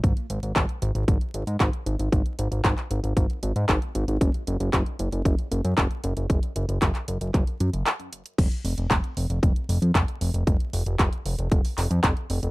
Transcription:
<<
  \new Staff \with { instrumentName = "Analog synth bass" } { \clef bass \time 4/4 \key aes \mixolydian \tempo 4 = 115 aes,,16 r16 aes,,16 aes,,16 aes,,16 r16 aes,,16 aes,,16 aes,,16 r16 aes,,16 aes,16 aes,,16 r16 aes,,16 aes,,16 | aes,,16 r16 aes,,16 aes,,16 aes,,16 r16 aes,,16 aes,,16 aes,,16 r16 aes,,16 aes,16 aes,,16 r16 aes,,16 aes,,16 | ges,,16 r16 ges,,16 ges,,16 ges,,16 r16 ges,,16 ges,,16 ges,,16 r16 ges,,16 ges,16 ges,,16 r16 ges,,16 ges,,16 | ges,,16 r16 ges,,16 ges,,16 ges,,16 r16 ges,,16 ges,,16 ges,,16 r16 ges,16 ges,,16 r4 |
f,,16 r16 f,,16 f,,16 f,,16 r16 f,,16 f,,16 f,,16 r16 f,,16 f,16 f,,16 r16 f,,16 f,,16 | f,,16 r16 f,,16 f,,16 f,,16 r16 f,,16 f,,16 f,,16 r16 f,,16 f,16 f,,16 r16 f,,16 f,,16 | }
  \new DrumStaff \with { instrumentName = "Drums" } \drummode { \time 4/4 <hh bd>16 hh16 hh16 hh16 <hc hh bd>16 hh16 hh16 hh16 <hh bd>16 hh16 hh16 hh16 <hc hh bd>16 hh16 hh16 hh16 | <hh bd>16 hh16 hh16 hh16 <hc hh bd>16 <hc hh>16 hh16 hh16 <hh bd>16 hh16 hh16 hh16 <hc hh bd>16 hh16 hh16 hh16 | <hh bd>16 hh16 hh16 hh16 <hc hh bd>16 hh16 hh16 hh16 <hh bd>16 hh16 hh16 hh16 <hc hh bd>16 hh16 hh16 hh16 | <hh bd>16 hh16 hh16 hh16 <hc hh bd>16 <hc hh>16 hh16 hh16 <hc hh bd>16 hh16 hh16 hh16 <hc hh>16 hh16 hh16 hh16 |
<cymc hh bd>16 hh16 hho16 hh16 <hc hh bd>16 hh16 hho16 hh16 <hh bd>16 hh16 hho16 hh16 <hc hh bd>16 hh16 hho16 hh16 | <hh bd>16 hh16 hho16 hh16 <hc hh bd>16 hh16 hho16 hh16 <hh bd>16 hho16 <hc hho>16 hh16 <hc hh bd>16 hh16 hho16 hh16 | }
>>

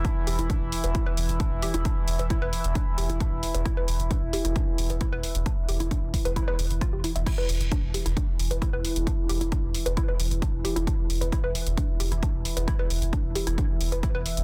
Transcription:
<<
  \new Staff \with { instrumentName = "Synth arpeggio sound" } { \time 4/4 \key c \major \tempo 4 = 133 d'16 r16 g'16 e'16 d'16 r8 b'16 e'16 b'16 r8 d'16 r16 g'16 e'16 | d'16 r8 b'16 e'16 b'16 r8 d'16 r16 g'16 e'16 d'16 r8 b'16 | e'16 b'16 r8 d'16 r16 g'16 e'16 d'16 r8 b'16 e'16 b'16 r8 | d'16 r16 g'16 e'16 d'16 r8 b'16 e'16 b'16 r8 f'16 g'16 e'16 e''16 |
e'16 b'16 r8 d'16 r16 g'16 e'16 d'16 r8 b'16 e'16 b'16 r8 | d'16 r16 g'16 e'16 d'16 r8 b'16 e'16 b'16 r8 d'16 r16 g'16 e'16 | d'16 r8 b'16 e'16 b'16 r8 d'16 r16 g'16 e'16 d'16 r8 b'16 | e'16 b'16 r8 d'16 r16 g'16 e'16 d'16 r8 b'16 e'16 b'16 r8 | }
  \new Staff \with { instrumentName = "Synth drone" } { \time 4/4 \key c \major <e e'>1~ | <e e'>1~ | <e e'>1~ | <e e'>1 |
<e e'>1~ | <e e'>1~ | <e e'>1~ | <e e'>1 | }
  \new Staff \with { instrumentName = "Sub bass" } { \clef bass \time 4/4 \key c \major r8 e,,16 e,,16 r16 e,,16 r16 e,,16 r8 e,,16 e,,16 r16 e,,16 r16 e,,16 | r8 e,,16 e,,16 r16 e,,16 r16 e,,16 r8 e,,16 e,,16 r16 e,,16 r16 e,,16 | r8 e,,16 e,,16 r16 e,,16 r16 e,,16 r8 e,,16 e,,16 r16 e,,16 r16 e,,16 | r8 e,,16 e,,16 r16 e,,16 r16 e,,16 r8 e,,16 e,,16 r16 e,,16 r16 e,,16 |
r8 e,,16 e,,16 r16 e,,16 r16 e,,16 r8 e,,16 e,,16 r16 e,,16 r16 e,,16 | r8 e,,16 e,,16 r16 e,,16 r16 e,,16 r8 e,,16 e,,16 r16 e,,16 r16 e,,16 | r8 e,,16 e,,16 r16 e,,16 r16 e,,16 r8 e,,16 e,,16 r16 e,,16 r16 e,,16 | r8 e,,16 e,,16 r16 e,,16 r16 e,,16 r8 e,,16 e,,16 r16 e,,16 r16 e,,16 | }
  \new DrumStaff \with { instrumentName = "Drums" } \drummode { \time 4/4 <hh bd>8 hho16 hh16 <hh bd>8 hho16 hh16 <hh bd>8 hho16 hh16 <hh bd>8 hho16 hh16 | <hh bd>8 hho16 hh16 <hh bd>8 hho16 hh16 <hh bd>8 hho16 hh16 <hh bd>8 hho16 hh16 | <hh bd>8 hho16 hh16 <hh bd>8 hho16 hh16 <hh bd>8 hho16 hh16 <hh bd>8 hho16 hh16 | <hh bd>8 hho16 hh16 <hh bd>8 <hho bd>16 hh16 <hh bd>8 hho16 hh16 <hh bd>8 hho16 hh16 |
<cymc hh bd>8 hho16 hh16 <hh bd>8 hho16 hh16 <hh bd>8 hho16 hh16 <hh bd>8 hho16 hh16 | <hh bd>8 hho16 hh16 <hh bd>8 hho16 hh16 <hh bd>8 hho16 hh16 <hh bd>8 hho16 hh16 | <hh bd>8 hho16 hh16 <hh bd>8 hho16 hh16 <hh bd>8 hho16 hh16 <hh bd>8 hho16 hh16 | <hh bd>8 hho16 hh16 <hh bd>8 hho16 hh16 <hh bd>8 hho16 hh16 <hh bd>8 hho16 hh16 | }
>>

